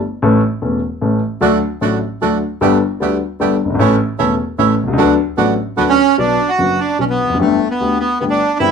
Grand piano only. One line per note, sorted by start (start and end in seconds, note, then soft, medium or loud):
0.22 0.39 A1 medium
0.22 0.39 A2 medium
0.22 0.39 E3 medium
0.22 0.39 A3 medium
0.22 0.39 C#4 medium
0.22 0.39 A4 medium
0.62 0.79 E1 soft
0.62 0.79 E2 soft
0.62 0.78 E3 soft
0.62 0.79 A3 soft
0.62 0.79 C#4 soft
0.62 0.79 A4 soft
1.01 1.18 A1 soft
1.01 1.19 A2 soft
1.01 1.18 E3 soft
1.01 1.19 A3 soft
1.01 1.19 C#4 soft
1.01 1.19 A4 soft
1.41 1.58 D2 medium
1.41 1.58 D3 medium
1.41 1.58 F#3 medium
1.41 1.58 A3 medium
1.41 1.58 D4 medium
1.41 1.58 A4 medium
1.81 1.98 A1 soft
1.81 1.98 A2 soft
1.81 1.98 F#3 soft
1.81 1.98 A3 soft
1.81 1.98 D4 soft
1.81 1.99 A4 soft
2.21 2.38 D2 medium
2.21 2.38 D3 soft
2.21 2.38 F#3 soft
2.21 2.38 A3 soft
2.21 2.38 D4 soft
2.21 2.39 A4 soft
2.61 2.78 G1 medium
2.61 2.78 G2 medium
2.61 2.78 G3 medium
2.61 2.78 B3 medium
2.61 2.78 D4 medium
2.61 2.78 A4 medium
3.00 3.17 D2 medium
3.00 3.17 D3 soft
3.00 3.17 G3 soft
3.00 3.17 B3 soft
3.00 3.17 D4 soft
3.00 3.17 A4 soft
3.40 3.57 G1 soft
3.40 3.57 G2 medium
3.40 3.57 G3 soft
3.40 3.57 B3 soft
3.40 3.57 D4 soft
3.40 3.57 A4 soft
3.65 3.70 F#1 soft
3.70 3.75 G1 medium
3.75 3.80 G#1 medium
3.79 3.96 A1 medium
3.79 3.96 A2 medium
3.79 3.96 E3 medium
3.79 3.96 A3 medium
3.79 3.96 C#4 medium
3.79 3.96 A4 medium
4.19 4.35 E1 medium
4.19 4.36 E2 medium
4.19 4.35 E3 soft
4.19 4.35 A3 soft
4.19 4.36 C#4 soft
4.19 4.36 A4 soft
4.58 4.75 A1 medium
4.58 4.75 A2 medium
4.58 4.75 E3 soft
4.58 4.75 A3 soft
4.58 4.75 C#4 soft
4.58 4.75 A4 medium
4.83 4.88 B1 soft
4.88 4.93 C2 medium
4.93 4.98 C#2 medium
4.98 5.15 D2 medium
4.98 5.15 D3 medium
4.98 5.14 F#3 medium
4.98 5.15 B3 medium
4.98 5.15 D4 medium
4.98 5.15 A4 medium
5.37 5.54 A1 soft
5.37 5.54 A2 medium
5.37 5.54 F#3 soft
5.37 5.54 B3 soft
5.37 5.54 D4 soft
5.37 5.54 A4 medium
5.77 5.94 D2 medium
5.77 5.94 D3 medium
5.77 5.94 F#3 soft
5.77 5.94 B3 soft
5.77 5.94 D4 soft
5.77 5.94 A4 soft
6.18 6.35 B1 medium
6.18 6.35 B2 medium
6.18 6.35 D3 soft
6.18 6.35 F#3 soft
6.18 6.35 B3 soft
6.18 6.35 F#4 soft
6.59 6.76 F#1 soft
6.59 6.76 F#2 soft
6.59 6.76 D3 soft
6.59 6.76 F#3 soft
6.59 6.76 B3 soft
6.59 6.76 F#4 soft
6.99 7.16 B1 soft
6.99 7.16 B2 soft
6.99 7.16 D3 soft
6.99 7.16 F#3 soft
6.99 7.16 B3 soft
6.99 7.16 F#4 soft
7.24 7.29 E2 soft
7.29 7.34 F2 soft
7.34 7.39 F#2 medium
7.39 7.56 G1 medium
7.39 7.56 G2 medium
7.39 7.56 D3 soft
7.39 7.56 A3 soft
7.39 7.56 B3 soft
7.39 7.56 G4 medium
7.80 7.97 D2 soft
7.80 7.97 D3 soft
7.80 7.97 A3 soft
7.80 7.97 B3 soft
7.80 7.97 G4 soft
8.21 8.37 G1 soft
8.21 8.37 G2 soft
8.21 8.37 D3 soft
8.21 8.37 A3 soft
8.21 8.37 B3 soft
8.21 8.37 G4 soft
8.60 8.71 G1 medium
8.60 8.71 G2 medium
8.60 8.71 E3 soft
8.60 8.71 G3 medium
8.60 8.71 C4 soft
8.60 8.71 G4 medium